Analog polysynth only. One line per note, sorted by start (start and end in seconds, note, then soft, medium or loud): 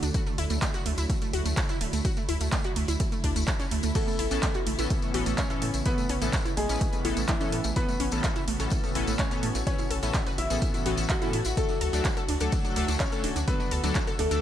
3.95 4.05 A2 medium
3.95 4.05 E3 medium
3.95 4.05 B3 medium
3.95 4.05 C#4 medium
3.95 4.05 A4 medium
4.31 4.47 A2 loud
4.31 4.47 E3 medium
4.31 4.47 B3 medium
4.31 4.47 C#4 medium
4.31 4.47 A4 loud
4.79 5.12 A2 medium
4.79 5.11 E3 medium
4.79 5.11 B3 medium
4.79 5.11 C#4 medium
4.79 5.11 A4 medium
5.14 5.30 A2 loud
5.14 5.30 E3 medium
5.14 5.30 B3 medium
5.14 5.30 C#4 medium
5.14 5.30 A4 loud
5.50 5.66 A2 medium
5.50 5.66 E3 medium
5.50 5.66 B3 medium
5.50 5.66 C#4 medium
5.50 5.66 A4 medium
5.86 5.96 A2 medium
5.86 5.96 E3 medium
5.86 5.96 B3 medium
5.86 5.96 C#4 medium
5.86 5.96 A4 medium
6.22 6.38 A2 medium
6.22 6.38 E3 medium
6.22 6.38 B3 medium
6.22 6.38 C#4 medium
6.22 6.38 A4 loud
6.69 7.02 A2 medium
6.69 7.02 E3 medium
6.69 7.02 B3 medium
6.69 7.02 C#4 medium
6.69 7.02 B4 medium
7.05 7.21 A2 loud
7.05 7.21 E3 medium
7.05 7.21 B3 medium
7.05 7.21 C#4 medium
7.05 7.21 A4 loud
7.41 7.57 A2 medium
7.41 7.57 E3 medium
7.41 7.57 B3 medium
7.41 7.57 C#4 medium
7.41 7.57 A4 medium
7.76 7.86 A2 medium
7.76 7.86 E3 medium
7.76 7.86 B3 medium
7.76 7.86 C#4 medium
7.76 7.86 A4 medium
8.12 8.28 A2 loud
8.12 8.28 E3 medium
8.12 8.28 B3 medium
8.12 8.28 C#4 medium
8.12 8.28 A4 loud
8.60 8.92 A2 medium
8.60 8.92 E3 medium
8.60 8.92 B3 medium
8.60 8.92 C#4 medium
8.60 8.92 A4 medium
8.95 9.11 A2 loud
8.95 9.11 E3 medium
8.95 9.11 B3 medium
8.95 9.11 C#4 loud
8.95 9.11 A4 loud
9.31 9.47 A2 medium
9.31 9.47 E3 medium
9.31 9.47 B3 medium
9.31 9.47 C#4 medium
9.31 9.47 A4 medium
9.67 9.77 A2 medium
9.67 9.77 E3 medium
9.67 9.77 B3 medium
9.67 9.77 C#4 medium
9.67 9.77 A4 medium
10.03 10.18 A2 medium
10.03 10.18 E3 medium
10.03 10.18 B3 medium
10.03 10.18 C#4 medium
10.03 10.18 A4 loud
10.50 10.83 A2 medium
10.50 10.83 E3 medium
10.50 10.83 B3 medium
10.50 10.83 C#4 medium
10.50 10.83 A4 medium
10.86 11.02 A2 loud
10.86 11.02 E3 medium
10.86 11.02 B3 medium
10.86 11.02 C#4 medium
10.86 11.02 A4 loud
11.22 11.38 A2 medium
11.22 11.38 E3 medium
11.22 11.38 B3 medium
11.22 11.38 C#4 medium
11.22 11.38 A4 medium
11.57 11.67 F#3 medium
11.57 11.67 A3 medium
11.57 11.67 D4 medium
11.57 11.67 A4 medium
11.93 12.09 F#3 medium
11.93 12.09 A3 medium
11.93 12.09 D4 medium
11.93 12.09 A4 loud
12.41 12.73 F#3 medium
12.41 12.73 A3 medium
12.41 12.73 D4 medium
12.41 12.73 A4 medium
12.76 12.92 F#3 loud
12.76 12.92 A3 medium
12.76 12.92 D4 medium
12.76 12.92 A4 loud
13.12 13.28 F#3 medium
13.12 13.28 A3 medium
13.12 13.28 D4 medium
13.12 13.28 A4 medium
13.48 13.58 F#3 medium
13.48 13.58 A3 medium
13.48 13.58 D4 medium
13.48 13.58 A4 medium
13.83 13.99 F#3 medium
13.83 13.99 A3 medium
13.83 13.99 D4 medium
13.83 13.99 A4 loud
14.31 14.41 F#3 medium
14.31 14.41 A3 medium
14.31 14.41 D4 medium
14.31 14.41 A4 medium